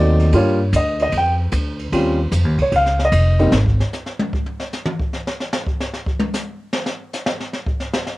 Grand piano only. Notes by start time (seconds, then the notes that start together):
Already playing: F#3 A3 C4 D#4 D5
0.34 G3 A#3 D4 F4 C#5
0.76 D#5
1.02 D#5
1.17 G5
1.92 G3 C4 C#4 F4
2.62 C#5
2.76 F5
3.05 D#5
3.39 G3 A#3 C4 D#4